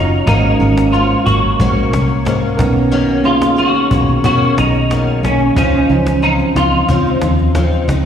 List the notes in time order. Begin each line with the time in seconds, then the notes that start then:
Already playing: F#1 F#3 C#4 D#4 F4
0.26 G#1 G#2 F#3 G#3 A#3 C#4 D#4 F#4 A#4, cajon bass
0.59 G#1 F#3 G#3 A#3 C#4 A#4, cajon slap
0.78 cajon slap
0.92 G#2 F#3 A#3 C#4 F4, cajon slap
1.26 G#1 F#3 A#3 C#4 F#4, cajon bass
1.60 A#1 G#2 F#3 A#3 C#4, cajon bass
1.93 C2 F#3 A#3 C#4, cajon slap
2.25 G#2 F#3 A#3 C#4, cajon slap
2.57 B1 D#3 A#3 B3 C#4 D#4 A#4, cajon bass, cajon slap
2.92 B2 D#3 A#3 C#4, cajon slap
3.07 cajon slap
3.23 D#3 A#3 C#4 D#4 F4 G#4, cajon slap
3.42 cajon slap
3.57 B2 D#3 A#3 C#4 F#4, cajon slap
3.74 cajon slap
3.91 B1 D#3 A#3 C#4, cajon bass
4.08 cajon slap
4.24 B2 D#3 A#3 C#4 F#4, cajon bass
4.42 cajon slap
4.57 B1 D#3 A#3 C#4 D#4, cajon slap
4.74 cajon slap
4.90 B2 D#3 A#3 C#4, cajon slap
5.08 cajon slap
5.23 B1 D#3 A#3 C#4, cajon slap
5.39 cajon slap
5.55 C#2 C#3 F3 C#4 D#4 C5, cajon bass
5.72 cajon slap
5.88 C#2 E3 F3 C#4 D#4 C5, cajon slap
5.95 F3
6.07 cajon slap
6.22 C#3 F3 C4 D#4, cajon slap
6.39 cajon slap
6.55 C#2 F3 C4 D#4 F4, cajon slap
6.72 cajon slap
6.88 C#2 C#3 F3 C4 D#4, cajon bass
7.06 cajon slap
7.21 D#2 F3 C4 D#4, cajon slap
7.38 cajon slap
7.54 C#3 F3 C4 D#4, cajon slap
7.72 cajon slap
7.88 C#2 F3 C4 D#4, cajon slap